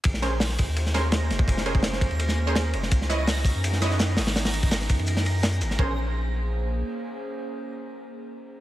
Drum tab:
RD |x-x---x-x-x-x-x-|x-x-x-xxx---x-x-|x-x---x-x-x-x---|--x-x-xxx-x-x-x-|
HH |----o-----------|----------------|----o---------oo|oo---x----o--x--|
SH |----------------|----------------|x-x-x-x-x-x-x-x-|x-x-x-x-x---x-x-|
SD |-oo-oo---oo-o-o-|-o--oo---o--o--o|-oo-oo---oooo-oo|oo--oo---o--o-oo|
BD |o-----o--------o|o--o--o---------|o-----o---------|---o--o---------|

RD |----------------|----------------|
HH |----------------|----------------|
SH |----------------|----------------|
SD |----------------|----------------|
BD |o---------------|----------------|